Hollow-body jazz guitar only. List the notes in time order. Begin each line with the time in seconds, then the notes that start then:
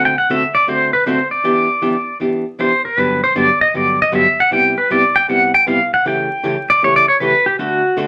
Already playing: D3 A3 C4 F#4 A4
0.30 D3 A3 C4 F#4 A4
0.67 D3 A3 C4 F#4 A4
1.06 D3 A3 C4 F#4 A4
1.44 E3 B3 D4 G4
1.82 E3 B3 D4 G4
2.20 E3 B3 D4 G4
2.59 E3 B3 D4 G4
2.97 G2 D3 F#3 B3 D4 G4
3.35 G2 D3 F#3 B3 D4 G4
3.74 G2 D3 F#3 B3 D4 G4
4.12 G2 D3 F#3 B3 D4 G4
4.51 C3 G3 B3 E4 G4
4.90 C3 G3 B3 E4 G4
5.28 C3 G3 B3 E4 G4
5.67 C3 G3 B3 E4 G4
6.05 C#3 E3 A3 C#4 G4
6.43 C#3 E3 A3 C#4 G4
6.82 C#3 E3 A3 C#4 G4
7.20 C#3 E3 A3 C#4 G4
7.59 D3 A3 D4 F#4 A4
7.97 D3 A3 D4 F#4 A4